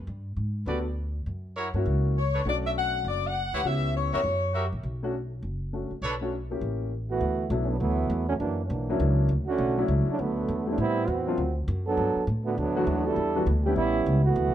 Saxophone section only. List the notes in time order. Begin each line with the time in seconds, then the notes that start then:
2.17 C#5
2.48 D5
2.66 E5
2.77 F#5
3.07 D5
3.26 F#5
3.66 E5
3.96 C#5
4.13 C#5